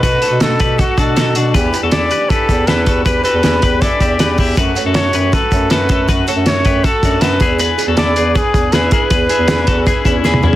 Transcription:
<<
  \new Staff \with { instrumentName = "Trumpet" } { \time 4/4 \key e \dorian \tempo 4 = 159 b'4 a'4 fis'8 a'4 r8 | r4 d''4 a'4 b'4 | b'8 b'4. d''4. r8 | r4 cis''4 a'4 b'4 |
r4 cis''4 a'4 b'4 | r4 d''4 gis'4 b'8 b'8~ | b'2. r4 | }
  \new Staff \with { instrumentName = "Clean electric guitar" } { \time 4/4 \key e \dorian <fis' b'>8 <fis' a'>4 <g' b'>8 <fis' a'>8 <d' fis'>8 <fis' a'>8 <d' fis'>8 | <g' b'>8. <fis' a'>16 <e' a'>8 <g' b'>8 <g' b'>4 <e' a'>8 <fis' a'>8 | <g' b'>8 <fis' a'>4 <g' b'>8 <e' a'>8 <e' g'>8 <g' b'>8 <e' g'>8 | <fis' b'>8. <fis' a'>16 <fis' a'>8 <g' b'>8 <fis' b'>4 <fis' a'>8 <fis' a'>8 |
<fis' b'>8 <fis' a'>4 <g' b'>8 <fis' a'>8 <d' fis'>8 <fis' a'>8 <e' gis'>8 | <gis' b'>8. <fis' a'>16 <e' a'>8 <gis' b'>8 <gis' b'>4 <e' gis'>8 <e' gis'>8 | <gis' b'>8 <e' gis'>4 <fis' a'>8 <e' gis'>8 <cis' e'>8 <e' gis'>8 <cis' e'>8 | }
  \new Staff \with { instrumentName = "Twelve-string acoustic guitar" } { \time 4/4 \key e \dorian <b, fis a d' fis'>8 <a d' fis'>8 <b, fis a d' fis'>8 <a d' fis'>8 <fis a d' fis'>8 <a d' fis'>8 <b, fis a d' fis'>8 <a d' fis'>8 | <e b d' g'>8 <b d' g'>8 <e b d' g'>8 <b d' g'>8 <e b d' g'>8 <b d' g'>8 <e b d' g'>8 <b d' g'>8 | <e b d' g'>8 <b d' g'>8 <e b d' g'>8 <b d' g'>8 <e b d' g'>8 <b d' g'>8 <e b d' g'>8 <b d' g'>8 | <fis a cis' fis'>8 <a cis' fis'>8 <fis a cis' fis'>8 <a cis' fis'>8 <fis a cis' fis'>8 <a cis' fis'>8 <fis a cis' fis'>8 <a cis' fis'>8 |
<fis a cis' fis'>8 <a cis' fis'>8 <fis a cis' fis'>8 <a cis' fis'>8 <fis a cis' fis'>8 <a cis' fis'>8 <fis a cis' fis'>8 <b d' gis'>8 | <e b d' gis'>8 <b d' gis'>8 <e b d' gis'>8 <b d' gis'>8 <e b d' gis'>8 <b d' gis'>8 <e b d' gis'>8 <b d' gis'>8 | <e b d' gis'>8 <b d' gis'>8 <e b d' gis'>8 <b d' gis'>8 <e b d' gis'>8 <b d' gis'>8 <e b d' gis'>8 <b d' gis'>8 | }
  \new Staff \with { instrumentName = "Bass clarinet" } { \clef bass \time 4/4 \key e \dorian b,8 r16 b,16 b,8 b,8. r16 b,8 b,8 b,8 | e,8 r16 e,16 e,8 r4 e,8 e,8 e,8 | e,8 r16 e,16 e,8 e,8. r16 e,8 e,8 e,8 | fis,8 r16 fis,16 fis,8 fis,8. r16 fis,8 fis,8 fis,8 |
fis,8 r16 fis,16 fis,8 fis,8. r16 fis,8 fis,8 e,8~ | e,8 r16 e,16 e,8 e,8. r16 e,8 e,8 r8 | e,8 r16 e,16 e,8 e,8. r16 e,8 e,8 e,8 | }
  \new DrumStaff \with { instrumentName = "Drums" } \drummode { \time 4/4 <hh bd>8 hh8 <hh sn>8 <hh bd>8 <hh bd>8 <hh bd>8 <hh sn>8 hh8 | <hh bd>8 hh8 <hh sn>8 hh8 <hh bd>8 <hh bd>8 <hh sn>8 <hh bd>8 | <hh bd>8 hh8 <hh sn>8 <hh bd>8 <hh bd>8 <hh bd>8 <hh sn>8 <hho bd>8 | <hh bd>8 hh8 <hh sn>8 hh8 <hh bd>8 <hh bd>8 <hh sn>8 <hh bd>8 |
<hh bd>8 hh8 <hh sn>8 <hh bd>8 <hh bd>8 <hh bd>8 <hh sn>8 <hh bd>8 | hh8 hh8 <hh sn>8 hh8 <hh bd>8 <hh bd>8 <hh sn>8 <hh bd>8 | <hh bd>8 hh8 <hh sn>8 <hh bd>8 <hh bd>8 <hh bd>8 sn16 tommh16 toml8 | }
>>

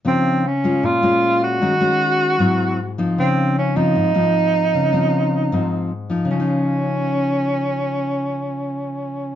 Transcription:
<<
  \new Staff \with { instrumentName = "Tenor saxophone" } { \time 4/4 \key des \major \tempo 4 = 154 c'4 des'4 f'4. ges'8~ | ges'2.~ ges'8 r8 | c'4 des'8 ees'2~ ees'8~ | ees'2. r4 |
des'1~ | des'1 | }
  \new Staff \with { instrumentName = "Nylon-string guitar" } { \time 4/4 \key des \major << { <f c' ees'>4 r8 <aes des' f'>4 <aes des' f'>4. | <aes des' ges'>8 <aes des' ges'>4. <ges c' fes'>4 r8 <f c' ees'>8~ | <f c' ees'>4. <f c' ees'>4 <f c' ees'>4.~ | <f c' ees'>8 <f c' ees'>4. <f c' ees'>4 r8 <f ees'>8~ |
<f ees'>4 r2. | r1 | } \\ { des2 bes,2 | ees2 aes,2 | des2 aes,2 | des2 aes,2 |
<des f ees'>1~ | <des f ees'>1 | } >> }
>>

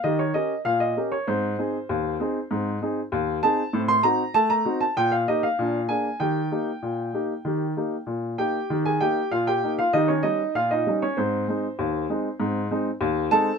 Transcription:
\new Staff \with { instrumentName = "Upright piano" } { \time 2/4 \key ees \major \tempo 4 = 97 << { ees''16 des''16 ees''8 f''16 ees''8 des''16 | c''2~ | c''4 r8 a''8~ | a''16 c'''16 bes''8 a''16 bes''8 a''16 |
g''16 f''16 ees''16 f''8. aes''8 | g''2~ | g''4 r8 g''8~ | g''16 <aes' aes''>16 <g' g''>8 <f' f''>16 <g' g''>8 <f' f''>16 |
<ees' ees''>16 <des' des''>16 <ees' ees''>8 <f' f''>16 <ees' ees''>8 <des' des''>16 | <c' c''>2~ | <c' c''>4 r8 <a' a''>8 | } \\ { <ees g'>8 <des' g' bes'>8 bes,8 <des' g' bes'>8 | <aes, c'>8 <c' ees' aes'>8 ees,8 <c' ees' aes'>8 | <aes, c'>8 <c' ees' aes'>8 ees,8 <c' ees' aes'>8 | <a, c'>8 <c' ees' fis'>8 a8 <c' ees' fis'>8 |
bes,8 <bes ees' g'>8 <bes, d'>8 <bes d' aes'>8 | <ees g'>8 <bes ees' g'>8 bes,8 <bes ees' g'>8 | <ees g'>8 <bes ees' g'>8 bes,8 <bes ees' g'>8 | <ees g'>8 <bes ees'>8 bes,8 <bes ees'>8 |
<ees g'>8 <g des'>8 bes,8 <g des' ees'>8 | aes,8 <aes c' ees'>8 ees,8 <aes c' ees'>8 | <aes, c'>8 <aes c' ees'>8 ees,8 <aes c' ees'>8 | } >> }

